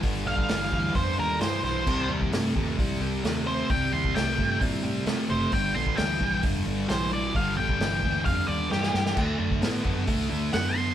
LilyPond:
<<
  \new Staff \with { instrumentName = "Lead electric guitar" } { \time 4/4 \key g \minor \tempo 4 = 132 r8 f''4. c''8 bes'8 c''8 c''8~ | c''8 r2. c''8 | g''8 c'''8 g''4 r4. c''8 | g''8 c'''8 g''4 r4 c''8 d''8 |
f''8 g''4. f''8 d''8 g'4 | r2. fis''8 c'''8 | }
  \new Staff \with { instrumentName = "Distorted electric guitar" } { \clef bass \time 4/4 \key g \minor <g, d>8 <g, d>8 <g, e>8 <g, e>8 <g, d>8 <g, d>8 <g, e>8 <g, e>8 | <c g>8 <c g>8 <c a>8 <c a>8 <c g>8 <c g>8 <c a>8 <c a>8 | <c g>8 <c g>8 <c a>8 <c a>8 <c g>8 <c g>8 <c a>8 <c a>8 | <g, d>8 <g, d>8 <g, e>8 <g, e>8 <g, d>8 <g, d>8 <g, e>8 <g, e>8 |
<g, d>8 <g, d>8 <g, e>8 <g, e>8 <g, d>8 <g, d>8 <g, e>8 <g, e>8 | <d a>8 <d a>8 <d b>8 <d b>8 <d a>8 <d a>8 <d b>8 <d b>8 | }
  \new Staff \with { instrumentName = "Fingered electric bass" } { \clef bass \time 4/4 \key g \minor g,,8 bes,,8 g,,8 d,8 f,8 ees,8 g,8 b,,8 | c,8 ees,8 g,8 ees,8 bes,,8 c,8 ees,4 | c,8 ees,8 c,8 g,8 bes,8 a,8 c8 fis,,8 | g,,8 bes,,8 d,8 bes,,8 f,,8 g,,8 bes,,4 |
g,,8 bes,,8 g,,8 d,8 f,8 ees,8 g,8 g,8 | d,8 fis,8 a,8 fis,8 c,8 d,8 fis,4 | }
  \new DrumStaff \with { instrumentName = "Drums" } \drummode { \time 4/4 <hho bd>8. bd16 <hho sn>8 bd8 <hho bd>4 <hho sn>8 sn8 | <cymc bd>8. bd16 <hho sn>8 bd8 <hho bd>4 <hho sn>4 | <hho bd>8. bd16 <hho sn>8 bd8 <hho bd>4 <hho sn>4 | <hho bd>8. bd16 <hho sn>8 bd8 <hho bd>4 <hho sn>4 |
<hho bd>8. bd16 <hho sn>8 bd8 <hho bd>4 sn16 sn16 sn16 sn16 | <cymc bd>8. bd16 <hho sn>8 bd8 <hho bd>4 <hho sn>4 | }
>>